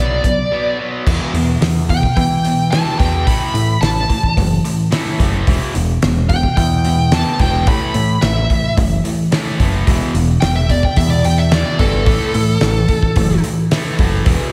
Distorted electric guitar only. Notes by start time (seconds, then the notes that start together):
Already playing: B2 F#3
0.00 B3
0.25 B2 F#3
0.51 B2 F#3 B3
0.79 B2 F#3 B3
1.07 E2 B2 E3
1.35 E2 B2
1.63 E2 B2
1.90 E2 B2
2.17 E2 B2
2.45 E2 B2
2.73 E2 B2 E3
2.99 E2 B2 E3
3.27 A2 E3 A3
3.55 A2 E3
3.83 A2 E3
4.09 A2 E3
4.38 A2 E3
4.65 A2 E3
4.91 A2 E3 A3
5.20 A2 E3 A3
5.48 E2 B2 E3
5.75 E2 B2
6.03 E2 B2
6.30 E2 B2
6.59 E2 B2
6.85 E2 B2
7.12 E2 B2 E3
7.40 E2 B2 E3
7.68 A2 E3 A3
7.95 A2 E3
8.23 A2 E3
8.50 A2 E3
8.77 A2 E3
9.05 A2 E3
9.32 A2 E3 A3
9.60 A2 E3 A3
9.87 E2 B2 E3
10.16 E2 B2
10.42 E2 B2
10.70 E2 B2
10.98 E2 B2
11.26 E2 B2
11.52 E2 B2 E3
11.80 E2 B2 E3
12.06 A2 E3 A3
12.35 A2 E3
12.62 A2 E3
12.88 A2 E3
13.16 A2 E3
13.44 A2 E3
13.71 A2 E3 A3
13.98 A2 E3 A3
14.25 E2 B2 E3